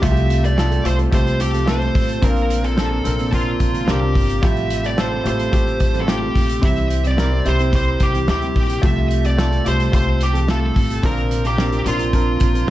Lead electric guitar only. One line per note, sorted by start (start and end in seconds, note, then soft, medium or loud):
0.04 0.45 E5 loud
0.45 0.83 D5 medium
0.87 0.94 C5 loud
1.15 1.39 C5 loud
1.42 1.69 G4 medium
1.69 2.24 C5 loud
2.25 2.65 A#4 loud
2.65 3.29 A4 medium
3.35 3.90 F4 medium
3.90 4.46 G4 medium
4.45 4.86 E5 loud
4.86 5.00 D5 medium
5.00 5.26 C5 medium
5.28 5.98 C5 loud
6.02 6.08 A4 medium
6.10 6.66 G4 medium
6.65 7.02 E5 medium
7.07 7.48 D5 medium
7.48 7.75 C5 medium
7.76 8.03 C5 loud
8.03 8.27 G4 medium
8.30 8.80 G4 medium
8.86 9.23 E5 loud
9.26 9.64 D5 loud
9.68 9.94 C5 medium
9.95 10.23 C5 loud
10.23 10.50 G4 medium
10.51 11.01 A4 loud
11.06 11.43 A#4 medium
11.47 11.87 G4 medium
11.88 12.69 F4 medium